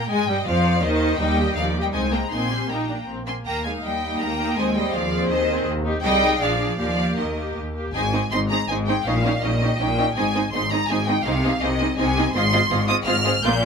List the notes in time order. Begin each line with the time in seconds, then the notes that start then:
Already playing: A#5
0.10 G#2 G#3 D#5 G#5
0.28 G2 G3 D#5 G5
0.46 F2 F3 D5 F5
0.83 D#2 D#3 C5 D#5
1.19 D#2 G3 D#4 D#5 G5
1.39 A#3 G4
1.56 D#2 F3 G3 D#4 D5 F5
1.75 A#3 G4
1.80 G3 D#5 G5
1.93 C2 G#3 C4 D#4 D#5 G#5
2.12 G#3 A#3 C4 G5 A#5
2.31 A#1 A#3 C4 D#4 G#5 C6
2.51 G3 G4
2.70 A#1 A#3 D#4 G5 A#5
2.90 D4
3.07 A#1 C4
3.26 A#3 C4 G#5 C6
3.46 D#2 A#3 G5 A#5
3.64 G#3 A#3 D#4 F5 G#5
3.83 D#2 G3 D#5 G5
4.03 A#3 D#4
4.20 D#2 A#3 G5 A#5
4.40 A#3 D#4
4.57 D#2 G#3 C4 G#4 D#5 G#5
4.75 G3 C4 G#4 D#5 G5
4.93 D#2 F3 D5 F5
5.12 C4 G#4
5.29 D#2 D#3 C5 D#5
5.50 C4 G#4
5.66 D#2
5.85 D#4 G4
6.03 C2 G3 D#4 G#4 D#5 G5
6.22 D#4 G#4
6.40 A#1 F3 D4 G#4 D5 F5
6.59 D4 G#4
6.78 D#2 F3 A#3 G4 D5 F5
6.98 A#3 G4
7.17 D#2 D#3 A#4 D#5
7.36 A#3 G4
7.56 D#2
7.75 A#3 G4
7.94 G#1 G#2 C4 D#4 G#4 D#5 G#5
8.13 C4 D#4 G#4 D#5
8.31 G#1 G#2 C4 D#4 G#4 D#5 C6
8.50 C4 D#4 G#4 D#5 A#5
8.68 G#1 G#2 C4 D#4 G#4 D#5 G#5
8.87 C4 D#4 G#4 D#5 G5
9.05 A#1 A#2 C#4 D#4 G4 D#5 F5
9.24 C#4 D#4 G4 D#5
9.42 A#1 A#2 C#4 D#4 G4 D#5
9.62 C#4 D#4 G4 D#5
9.79 A#1 A#2 C#4 D#4 G4 D#5 G5
9.98 C#4 D#4 G4 D#5
10.16 G#1 G#2 C4 D#4 G#4 D#5 G#5
10.34 C4 D#4 G#4 D#5
10.53 G#1 G#2 C4 D#4 G#4 D#5 C6
10.71 C4 D#4 G#4 D#5 A#5
10.89 G#1 G#2 C4 D#4 G#4 D#5 G#5
11.07 C4 D#4 G#4 D#5 G5
11.25 C2 C3 C4 D#4 G#4 D#5 F5
11.44 C4 D#4 G#4 D#5
11.61 C2 C3 C4 D#4 G#4 D#5
11.79 C4 D#4 G#4 D#5
11.97 C2 C3 C4 D#4 G#4 D#5 G#5
12.16 C4 D#4 G#4 D#5
12.34 G#1 G#2 C4 F4 G#4 D#5 C6
12.52 C4 F4 G#4 D#5
12.70 G#1 G#2 C4 F4 G#4 D#5
12.88 C4 F4 G#4 D#5 D#6
13.06 G#1 G#2 C4 F4 G#4 D#5 F6
13.24 C4 F4 G#4 D#5
13.44 A#1 A#2 A#3 F4 G#4 D5 G6